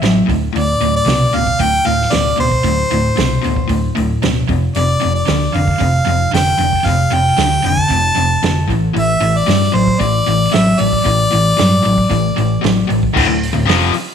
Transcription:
Already playing: E5
0.02 A1 A2 F#3, snare, open hi-hat
0.26 D1 D2 A2, kick, open hi-hat
0.53 D1 D2 A2 D5, open hi-hat
0.57 A2
0.81 D1 D2 A2, open hi-hat
0.96 D5
1.05 C2 D2 B2, snare, open hi-hat
1.33 D1 D2 B2 F5, open hi-hat
1.47 kick
1.60 D1 D2 A2 G5, kick, open hi-hat
1.85 D1 D2 A2 F5, open hi-hat
2.01 snare
2.11 D1 D2 B2 D5, snare, open hi-hat
2.36 D1 D2 B2 C5, open hi-hat
2.51 kick
2.64 D1 D2 A2, kick, open hi-hat
2.91 D1 D2 A2, open hi-hat
3.16 C2 D2 B2, snare, open hi-hat
3.42 D1 D2 B2, open hi-hat
3.56 kick
3.68 D1 D2 A2, kick, open hi-hat
3.95 D1 D2 A2, open hi-hat
4.22 D1 D2 B2, snare, open hi-hat
4.49 F1 F2 C3, kick, open hi-hat
4.75 F1 F2 C3 D5, open hi-hat
5.01 F1 F2 C3, open hi-hat
5.15 D5
5.27 D2 F2 D3, snare, open hi-hat
5.42 snare
5.54 F1 F2 D3 F5, open hi-hat
5.68 kick
5.80 F1 F2 C3, kick, open hi-hat
6.06 F1 F2 C3, open hi-hat
6.33 F1 F2 D3 G5, snare, open hi-hat
6.59 F1 F2 D3, open hi-hat
6.73 kick
6.84 F1 F2 C3 F5, kick, open hi-hat
6.88 C3
7.11 F1 F2 C3 G5, open hi-hat
7.38 D2 F2 D3, snare, open hi-hat
7.51 snare
7.64 F1 F2 D3 A5, open hi-hat
7.77 kick
7.90 F1 F2 C3, kick, open hi-hat
8.16 F1 F2 C3, open hi-hat
8.43 F1 F2 D3, snare, open hi-hat
8.68 A1 A2 E3, kick, open hi-hat
8.93 A1 A2 E3, open hi-hat
8.98 E5
9.20 A1 A2 E3, open hi-hat
9.37 D5
9.46 G2 A2 F#3, snare, open hi-hat
9.64 snare
9.72 A1 A2 F#3 C5, open hi-hat
9.88 kick
9.99 A1 A2 E3 D5, kick, open hi-hat
10.26 A1 A2 E3, open hi-hat
10.52 A1 A2 F#3 E5, snare, open hi-hat
10.78 A1 A2 F#3 D5, open hi-hat
10.93 kick
11.04 A1 A2 E3, kick, open hi-hat
11.31 A1 A2 E3, open hi-hat
11.57 G2 A2 F#3, snare, open hi-hat
11.83 A1 A2 F#3, open hi-hat
11.98 kick
12.10 A1 A2 E3, kick, open hi-hat
12.37 A1 A2 E3, open hi-hat
12.61 A1 A2 F#3, snare, open hi-hat
12.87 A1 A2 F#3, open hi-hat
13.03 kick
13.14 D1 D2 A2, kick, crash
13.28 D1 D2 A2
13.43 open hi-hat
13.53 D1 D2 A2
13.65 F1 F2 C3 F3, open hi-hat
13.70 snare
13.93 muted overdriven electric guitar stroke, muted picked electric bass stroke, open hi-hat

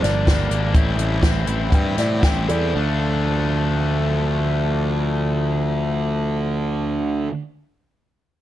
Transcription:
Already playing: F3 G3 A#3 D4
0.03 G1 D4 D5, snare, closed hi-hat
0.26 G1 G3 A#3 D4 G4, kick, snare, closed hi-hat
0.50 G#1 D4, closed hi-hat
0.54 A#3
0.73 A1 A2 E3 C4 E4, kick, closed hi-hat
0.98 A1 G3, closed hi-hat
1.21 A1 E3 C4 E4, kick, snare, closed hi-hat
1.46 A1 C4 E4, closed hi-hat
1.69 G2 G3 F#5, kick, closed hi-hat
1.73 G5
1.96 A2 C4 D5, snare, closed hi-hat
2.19 A1 E3 G4 F#5, kick, snare, closed hi-hat
2.24 C4 E4 G5
2.48 E2 C4 E4 A4 D5, closed hi-hat
2.73 D2 D3 F3 A3 D4 F4
2.79 D4

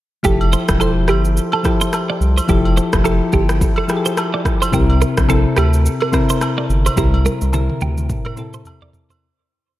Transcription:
0.23 F1 F3 E4 G4 A4, kick, shaker
0.41 high agogo
0.53 C5, shaker
0.68 E1, kick, cross-stick, shaker
0.79 F3 E4 G4 A4 C5, low woodblock, shaker
1.08 G1 G4, cross-stick, high agogo, shaker
1.25 shaker
1.37 shaker
1.52 A4, high agogo
1.63 F3 E4 G4 A4, kick, cross-stick, shaker
1.81 C5, shaker
1.93 cross-stick, high agogo, low woodblock, shaker
2.10 D5
2.21 C2, shaker
2.38 C5, high agogo, shaker
2.48 F1 F3 E4 G4 A4, kick, shaker
2.65 high agogo
2.77 C5, shaker
2.93 F1, kick, cross-stick, shaker
3.04 F3 E4 G4 A4, low woodblock, shaker
3.32 G1 G4, kick, shaker
3.49 cross-stick, shaker
3.61 kick, shaker
3.76 A4, high agogo
3.88 F3 E4 G4 G#4, cross-stick, shaker
3.97 A4
4.05 C5, shaker
4.17 cross-stick, high agogo, low woodblock, shaker
4.34 D5
4.45 kick, cross-stick, shaker
4.62 C5, high agogo, shaker
4.72 C2 C3 C4 E4 G4 A#4, kick, shaker
4.90 high agogo
5.02 A#4, shaker
5.17 A#1, kick, cross-stick, shaker
5.28 C3 C4 E4 A4, low woodblock, shaker
5.56 D2 G4, cross-stick, high agogo, shaker
5.73 shaker
5.86 shaker
6.00 A#4, high agogo
6.12 C3 C4 E4 A#4, kick, cross-stick, shaker
6.29 C5, shaker
6.41 cross-stick, high agogo, low woodblock, shaker
6.58 D5
6.69 G1, shaker
6.86 C5, high agogo, shaker
6.96 C2 C3 C4 E4 G4 A#4, kick, high tom, shaker
7.14 high tom, high agogo
7.25 A#4, high tom, shaker
7.41 C2, high tom, shaker
7.52 C3 C4 E4 A4 A#4, mid tom, low woodblock, shaker
7.70 mid tom
7.81 D2 G4, mid tom, shaker
7.98 mid tom, shaker
8.09 kick, mid tom, shaker
8.25 A#4, mid tom, high agogo
8.36 C3 C4 E4 A4, mid tom, shaker
8.53 C5, mid tom, shaker
8.65 floor tom, high agogo, low woodblock, shaker
8.82 D5, floor tom
8.93 floor tom, shaker
9.10 C5, floor tom, high agogo, shaker

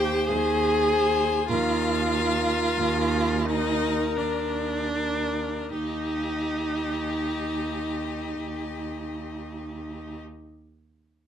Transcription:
Already playing: D#2 G4 C5 G5
0.27 D#2 G#4 G#5
0.89 C5
1.48 D#2 F4 A#4 F5
2.11 A#4
2.77 D#2
3.45 D#4 A#4 D#5
4.17 D#2 D4 D5
4.95 A#4
5.71 D#2 D#4 G4 D#5

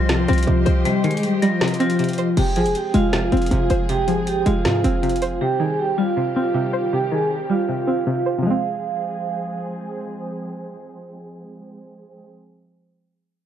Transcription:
Already playing: C2 D#3 F3 G3 F4 G4 C5 D#5 C6
0.09 C3, snare, closed hi-hat
0.28 C2 F3 C4 F4, closed hi-hat
0.33 closed hi-hat
0.38 closed hi-hat
0.43 closed hi-hat
0.47 C2 C3, closed hi-hat
0.66 C2 C5, closed hi-hat
0.85 C3 G3 G4, closed hi-hat
1.04 D#3 G#3 G#4, closed hi-hat, open hi-hat
1.11 closed hi-hat
1.17 closed hi-hat
1.23 G3 G4, closed hi-hat
1.42 F3 G3 F4, closed hi-hat
1.61 C3, snare, closed hi-hat
1.68 closed hi-hat
1.74 closed hi-hat
1.80 F3 C4 F4, closed hi-hat
1.90 closed hi-hat
1.99 C3, closed hi-hat
2.04 closed hi-hat
2.09 closed hi-hat
2.13 closed hi-hat
2.18 C5, closed hi-hat
2.37 F1 C3 F3 G#3 C4 G4 G#4 G5, closed hi-hat, crash
2.56 G#1 F3 G#4 G#5, closed hi-hat, open hi-hat
2.66 F1, closed hi-hat
2.75 G4 G5, closed hi-hat
2.94 F1 G#3 F4 F5, closed hi-hat
3.13 C3, snare, closed hi-hat
3.32 F1 C4 F4 F5, closed hi-hat
3.37 closed hi-hat
3.42 closed hi-hat
3.46 closed hi-hat
3.51 F1 C3, closed hi-hat
3.70 F1 C5, closed hi-hat
3.89 C3 G4 G5, closed hi-hat
4.08 G1 F3 G#4 G#5, closed hi-hat
4.27 G4 G5, closed hi-hat
4.46 F1 G#3 F4 F5, closed hi-hat
4.65 G#2 C3, snare, closed hi-hat
4.84 F1 C4 F4 F5, closed hi-hat
5.03 C3, closed hi-hat
5.09 closed hi-hat
5.16 closed hi-hat
5.22 C5, closed hi-hat
5.41 C3 D#3 G3 G4 G5
5.60 D#3 G#4 G#5
5.79 G4 G5
5.98 G3 F4 F5
6.17 C3
6.36 C4 F4 F5
6.54 C3
6.73 C5
6.93 C3 G4 G5
7.11 D#3 G#4 G#5
7.31 G4 G5
7.50 G3 F4 F5
7.69 C3
7.87 C4 F4 F5
8.07 C3
8.26 C5
8.39 C3 F3
8.45 F3 G#3 C4 G#4 F5
8.51 C4

